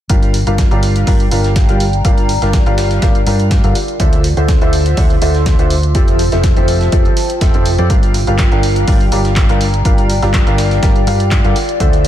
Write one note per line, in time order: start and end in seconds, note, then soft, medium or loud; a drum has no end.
0.09 0.44 G1 medium
0.09 0.34 G3 medium
0.09 0.34 D4 medium
0.09 0.34 F4 medium
0.09 12.08 F4 medium
0.09 0.34 G4 medium
0.09 0.34 A#4 medium
0.09 0.34 F5 medium
0.09 kick loud
0.09 closed hi-hat medium
0.22 closed hi-hat soft
0.34 closed hi-hat medium
0.34 open hi-hat medium
0.47 0.69 G1 medium
0.47 0.67 G3 medium
0.47 0.67 D4 medium
0.47 0.67 F4 medium
0.47 0.67 G4 medium
0.47 0.67 A#4 medium
0.47 0.67 F5 medium
0.47 closed hi-hat soft
0.56 6.67 D5 medium
0.56 kick loud
0.56 snare loud
0.56 closed hi-hat medium
0.61 4.61 G5 medium
0.71 1.05 G1 medium
0.71 1.04 G3 medium
0.71 1.04 D4 medium
0.71 1.04 F4 medium
0.71 1.04 G4 medium
0.71 1.04 A#4 medium
0.71 1.04 F5 medium
0.71 closed hi-hat soft
0.83 closed hi-hat medium
0.83 open hi-hat medium
0.96 3.75 A#5 medium
0.96 closed hi-hat soft
1.07 1.29 G1 medium
1.07 1.23 G3 medium
1.07 1.23 D4 medium
1.07 1.23 F4 medium
1.07 1.23 G4 medium
1.07 1.23 A#4 medium
1.07 1.23 F5 medium
1.07 kick loud
1.07 closed hi-hat medium
1.07 open hi-hat medium
1.20 closed hi-hat soft
1.31 1.66 G1 medium
1.31 1.66 G3 medium
1.31 1.66 D4 medium
1.31 1.66 F4 medium
1.31 1.66 G4 medium
1.31 1.66 A#4 medium
1.31 1.66 F5 medium
1.31 closed hi-hat medium
1.31 open hi-hat loud
1.44 snare soft
1.44 closed hi-hat soft
1.56 kick loud
1.56 snare loud
1.56 closed hi-hat medium
1.69 2.02 G1 medium
1.69 1.83 G3 medium
1.69 1.83 D4 medium
1.69 1.83 F4 medium
1.69 1.83 G4 medium
1.69 1.83 A#4 medium
1.69 1.83 F5 medium
1.69 closed hi-hat soft
1.80 closed hi-hat medium
1.80 open hi-hat medium
1.93 closed hi-hat soft
2.05 2.39 G1 medium
2.05 2.29 G3 medium
2.05 2.29 D4 medium
2.05 2.29 F4 medium
2.05 2.29 G4 medium
2.05 2.29 A#4 medium
2.05 2.29 F5 medium
2.05 kick loud
2.05 closed hi-hat medium
2.18 closed hi-hat soft
2.29 closed hi-hat medium
2.29 open hi-hat loud
2.42 2.64 G1 loud
2.42 2.63 G3 medium
2.42 2.63 D4 medium
2.42 2.63 F4 medium
2.42 2.63 G4 medium
2.42 2.63 A#4 medium
2.42 2.63 F5 medium
2.42 snare soft
2.42 closed hi-hat soft
2.53 kick loud
2.53 snare loud
2.53 closed hi-hat medium
2.66 3.00 G1 medium
2.66 2.99 G3 medium
2.66 3.00 D4 medium
2.66 2.99 F4 medium
2.66 3.00 G4 medium
2.66 3.00 A#4 medium
2.66 3.00 F5 medium
2.66 closed hi-hat soft
2.78 snare loud
2.78 closed hi-hat medium
2.78 open hi-hat medium
2.91 snare soft
2.91 closed hi-hat soft
3.02 3.24 G1 medium
3.02 3.18 G3 medium
3.02 3.18 D4 medium
3.02 3.18 F4 medium
3.02 3.18 G4 medium
3.02 3.18 A#4 medium
3.02 3.18 F5 medium
3.02 kick loud
3.02 snare loud
3.02 closed hi-hat medium
3.15 closed hi-hat soft
3.27 3.61 G2 medium
3.27 3.61 G3 medium
3.27 3.61 D4 medium
3.27 3.61 F4 medium
3.27 3.61 G4 medium
3.27 3.61 A#4 medium
3.27 3.61 F5 medium
3.27 snare soft
3.27 closed hi-hat medium
3.27 open hi-hat loud
3.40 closed hi-hat soft
3.51 kick loud
3.51 snare loud
3.51 closed hi-hat medium
3.64 3.72 G2 medium
3.64 3.74 D3 medium
3.64 3.74 D4 medium
3.64 3.74 F4 medium
3.64 3.74 G4 medium
3.64 3.74 A#4 medium
3.64 3.74 F5 medium
3.64 closed hi-hat soft
3.75 closed hi-hat medium
3.75 open hi-hat loud
3.88 closed hi-hat soft
4.00 4.35 D2 medium
4.00 4.24 D3 medium
4.00 4.24 D4 medium
4.00 4.24 F4 medium
4.00 4.24 A4 medium
4.00 4.24 C5 medium
4.00 4.24 E5 medium
4.00 kick loud
4.00 closed hi-hat medium
4.13 closed hi-hat soft
4.24 closed hi-hat medium
4.24 open hi-hat loud
4.37 4.59 D2 medium
4.37 4.58 D3 medium
4.37 4.58 D4 medium
4.37 4.58 F4 medium
4.37 4.58 A4 medium
4.37 4.58 C5 medium
4.37 4.58 E5 medium
4.37 closed hi-hat soft
4.45 6.73 C6 medium
4.45 kick loud
4.45 snare loud
4.45 closed hi-hat medium
4.61 4.95 D2 medium
4.61 4.95 D3 medium
4.61 4.95 D4 medium
4.61 4.95 F4 medium
4.61 4.95 A4 medium
4.61 4.95 C5 medium
4.61 4.95 E5 medium
4.61 closed hi-hat soft
4.73 9.36 C5 medium
4.73 closed hi-hat medium
4.73 open hi-hat medium
4.86 closed hi-hat soft
4.97 5.13 D3 medium
4.97 5.13 D4 medium
4.97 5.13 F4 medium
4.97 5.13 A4 medium
4.97 5.13 C5 medium
4.97 5.13 E5 medium
4.97 kick loud
4.97 closed hi-hat medium
4.97 open hi-hat medium
5.10 closed hi-hat soft
5.22 5.56 D2 medium
5.22 5.56 D3 medium
5.22 5.56 D4 medium
5.22 5.56 F4 medium
5.22 5.56 A4 medium
5.22 5.56 C5 medium
5.22 5.56 E5 medium
5.22 closed hi-hat medium
5.22 open hi-hat loud
5.35 snare soft
5.35 closed hi-hat soft
5.46 kick loud
5.46 snare loud
5.46 closed hi-hat medium
5.59 5.93 D2 medium
5.59 5.74 D3 medium
5.59 5.74 D4 medium
5.59 5.74 F4 medium
5.59 5.74 A4 medium
5.59 5.74 C5 medium
5.59 5.74 E5 medium
5.59 closed hi-hat soft
5.70 closed hi-hat medium
5.70 open hi-hat loud
5.83 closed hi-hat soft
5.95 6.30 F1 medium
5.95 6.19 F3 medium
5.95 6.19 C4 medium
5.95 6.19 F4 medium
5.95 6.19 G4 medium
5.95 6.19 A4 medium
5.95 6.19 E5 medium
5.95 kick loud
5.95 closed hi-hat medium
6.08 closed hi-hat soft
6.19 closed hi-hat medium
6.19 open hi-hat loud
6.32 6.54 F1 loud
6.32 6.53 F3 medium
6.32 6.53 C4 medium
6.32 6.53 F4 medium
6.32 6.53 G4 medium
6.32 6.53 A4 medium
6.32 6.53 E5 medium
6.32 snare soft
6.32 closed hi-hat soft
6.44 kick loud
6.44 snare loud
6.44 closed hi-hat medium
6.54 6.90 F1 medium
6.54 6.90 F3 medium
6.54 6.90 C4 medium
6.54 6.90 F4 medium
6.54 6.90 G4 medium
6.54 6.90 A4 medium
6.54 6.90 E5 medium
6.54 7.90 A5 medium
6.54 closed hi-hat soft
6.68 closed hi-hat medium
6.68 open hi-hat medium
6.81 12.08 G5 medium
6.81 snare soft
6.81 closed hi-hat soft
6.92 7.06 F1 medium
6.92 7.08 F3 medium
6.92 7.08 C4 medium
6.92 7.08 F4 medium
6.92 7.08 G4 medium
6.92 7.08 A4 medium
6.92 7.08 E5 medium
6.92 kick loud
6.92 closed hi-hat medium
7.05 closed hi-hat soft
7.17 snare soft
7.17 closed hi-hat medium
7.17 open hi-hat loud
7.30 closed hi-hat soft
7.41 7.52 F1 medium
7.41 7.51 F3 medium
7.41 7.51 C4 medium
7.41 7.51 F4 medium
7.41 7.51 G4 medium
7.41 7.51 A4 medium
7.41 7.51 E5 medium
7.41 kick loud
7.41 snare loud
7.41 closed hi-hat medium
7.54 7.76 F1 medium
7.54 7.69 F3 medium
7.54 7.69 C4 medium
7.54 7.69 F4 medium
7.54 7.69 G4 medium
7.54 7.69 A4 medium
7.54 7.69 E5 medium
7.54 closed hi-hat soft
7.66 closed hi-hat medium
7.66 open hi-hat loud
7.78 7.88 F2 medium
7.78 7.88 C4 medium
7.78 7.88 F4 medium
7.78 7.88 G4 medium
7.78 7.88 A4 medium
7.78 7.88 D5 medium
7.78 closed hi-hat soft
7.90 8.25 G1 medium
7.90 8.14 G3 medium
7.90 8.14 D4 medium
7.90 8.14 F4 medium
7.90 8.14 G4 medium
7.90 8.14 A#4 medium
7.90 8.14 F5 medium
7.90 kick loud
7.90 closed hi-hat medium
8.03 closed hi-hat soft
8.14 closed hi-hat medium
8.14 open hi-hat medium
8.21 12.08 D5 medium
8.27 8.49 G1 medium
8.27 8.48 G3 medium
8.27 8.48 D4 medium
8.27 8.48 F4 medium
8.27 8.48 G4 medium
8.27 8.48 A#4 medium
8.27 8.48 F5 medium
8.27 closed hi-hat soft
8.38 kick loud
8.38 snare loud
8.38 clap loud
8.38 closed hi-hat medium
8.52 8.85 G1 medium
8.52 8.85 G3 medium
8.52 8.85 D4 medium
8.52 8.85 F4 medium
8.52 8.85 G4 medium
8.52 8.85 A#4 medium
8.52 8.85 F5 medium
8.52 closed hi-hat soft
8.63 closed hi-hat medium
8.63 open hi-hat medium
8.76 closed hi-hat soft
8.88 9.10 G1 medium
8.88 9.03 G3 medium
8.88 9.03 D4 medium
8.88 9.03 F4 medium
8.88 9.03 G4 medium
8.88 9.03 A#4 medium
8.88 9.03 F5 medium
8.88 kick loud
8.88 closed hi-hat medium
8.88 open hi-hat medium
9.01 closed hi-hat soft
9.06 11.56 A#5 medium
9.12 9.47 G1 medium
9.12 9.46 G3 medium
9.12 9.46 D4 medium
9.12 9.46 F4 medium
9.12 9.46 G4 medium
9.12 9.46 A#4 medium
9.12 9.46 F5 medium
9.12 closed hi-hat medium
9.12 open hi-hat loud
9.25 snare soft
9.25 closed hi-hat soft
9.36 kick loud
9.36 snare loud
9.36 clap loud
9.36 closed hi-hat medium
9.49 9.83 G1 medium
9.49 9.64 G3 medium
9.49 9.64 D4 medium
9.49 9.64 F4 medium
9.49 9.64 G4 medium
9.49 9.64 A#4 medium
9.49 9.64 F5 medium
9.49 closed hi-hat soft
9.61 closed hi-hat medium
9.61 open hi-hat medium
9.74 closed hi-hat soft
9.85 10.20 G1 medium
9.85 10.09 G3 medium
9.85 10.09 D4 medium
9.85 10.09 F4 medium
9.85 10.09 G4 medium
9.85 10.09 A#4 medium
9.85 10.09 F5 medium
9.85 kick loud
9.85 closed hi-hat medium
9.98 closed hi-hat soft
10.10 closed hi-hat medium
10.10 open hi-hat medium
10.22 10.44 G1 medium
10.22 10.43 G3 medium
10.22 10.43 D4 medium
10.22 10.43 F4 medium
10.22 10.43 G4 medium
10.22 10.43 A#4 medium
10.22 10.43 F5 medium
10.22 snare soft
10.22 closed hi-hat soft
10.33 kick loud
10.33 snare loud
10.33 clap loud
10.33 closed hi-hat medium
10.47 10.80 G1 medium
10.47 10.80 G3 medium
10.47 10.80 D4 medium
10.47 10.80 F4 medium
10.47 10.80 G4 medium
10.47 10.80 A#4 medium
10.47 10.80 F5 medium
10.47 closed hi-hat soft
10.58 snare medium
10.58 closed hi-hat medium
10.58 open hi-hat medium
10.71 snare soft
10.71 closed hi-hat soft
10.83 11.05 G1 medium
10.83 10.98 G3 medium
10.83 10.98 D4 medium
10.83 10.98 F4 medium
10.83 10.98 G4 medium
10.83 10.98 A#4 medium
10.83 10.98 F5 medium
10.83 kick loud
10.83 snare loud
10.83 closed hi-hat medium
10.96 closed hi-hat soft
11.07 11.42 G2 medium
11.07 11.41 G3 medium
11.07 11.41 D4 medium
11.07 11.41 F4 medium
11.07 11.41 G4 medium
11.07 11.41 A#4 medium
11.07 11.41 F5 medium
11.07 snare soft
11.07 closed hi-hat medium
11.07 open hi-hat medium
11.20 closed hi-hat soft
11.31 kick loud
11.31 snare loud
11.31 clap loud
11.31 closed hi-hat medium
11.44 11.52 G2 medium
11.44 11.54 D3 medium
11.44 11.54 D4 medium
11.44 11.54 F4 medium
11.44 11.54 G4 medium
11.44 11.54 A#4 medium
11.44 11.54 F5 medium
11.44 closed hi-hat soft
11.56 closed hi-hat medium
11.56 open hi-hat medium
11.69 closed hi-hat soft
11.80 12.08 D2 medium
11.80 12.05 D3 medium
11.80 12.05 D4 medium
11.80 12.05 F4 medium
11.80 12.05 A4 medium
11.80 12.05 C5 medium
11.80 12.08 C5 medium
11.80 12.05 E5 medium
11.80 kick loud
11.80 closed hi-hat medium
11.93 closed hi-hat soft
12.05 closed hi-hat medium
12.05 open hi-hat loud